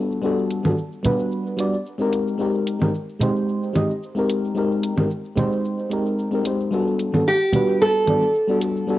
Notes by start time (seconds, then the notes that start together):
Already playing: G3 B3 D4 F#4 A4
0.12 shaker
0.22 G3 B3 D4 F#4 A4, shaker
0.39 shaker
0.51 closed hi-hat, shaker
0.63 G3 B3 D4 F#4 A4, low conga, shaker
0.78 shaker
0.93 shaker
1.03 G3 B3 D4 F#4 B4, closed hi-hat, high conga, low conga, shaker
1.19 shaker
1.32 shaker
1.47 shaker
1.57 G3 B3 D4 F#4 D5, closed hi-hat, shaker
1.74 shaker
1.86 shaker
1.98 G#3 C4 D#4 G4 A#4, shaker
2.13 closed hi-hat, shaker
2.28 shaker
2.38 G#3 C4 D#4 G4 A#4, shaker
2.55 shaker
2.67 closed hi-hat, shaker
2.79 G#3 C4 D#4 G4 A#4, low conga, shaker
2.94 shaker
3.09 shaker
3.19 G#3 C4 D#4 G4 C5, closed hi-hat, high conga, low conga, shaker
3.36 shaker
3.49 shaker
3.63 shaker
3.73 G#3 C4 D#4 G4 D#5, closed hi-hat, low conga, shaker
3.90 shaker
4.03 shaker
4.15 G#3 C4 D#4 G4 A#4, shaker
4.29 closed hi-hat, shaker
4.45 shaker
4.55 G#3 C4 D#4 G4 A#4, shaker
4.71 shaker
4.83 closed hi-hat, shaker
4.96 G#3 C4 D#4 G4 A#4, low conga, shaker
5.10 shaker
5.25 shaker
5.35 G#3 C4 D#4 G4 C5, closed hi-hat, high conga, low conga, shaker
5.52 shaker
5.65 shaker
5.79 shaker
5.89 G#3 C4 D#4 G4 A#4, closed hi-hat, shaker
6.06 shaker
6.19 shaker
6.31 G#3 C4 D#4 G4 A#4, shaker
6.44 G#3 C4 D#4 G4 C5, closed hi-hat, shaker
6.60 shaker
6.71 G3 B3 D4 F#4 A4, shaker
6.87 shaker
6.99 closed hi-hat, shaker
7.12 G3 B3 D4 F#4 A4, low conga, shaker
7.27 G4, shaker
7.41 shaker
7.52 G3 B3 D4 F#4 B4, closed hi-hat, high conga, low conga, shaker
7.68 shaker
7.81 A4, shaker
7.95 shaker
8.06 G3 B3 D4 F#4 D5, closed hi-hat, low conga, shaker
8.22 shaker
8.35 shaker
8.48 G3 B3 D4 F#4 A4, shaker
8.62 closed hi-hat, shaker
8.77 shaker
8.87 G3 B3 D4 F#4 A4, shaker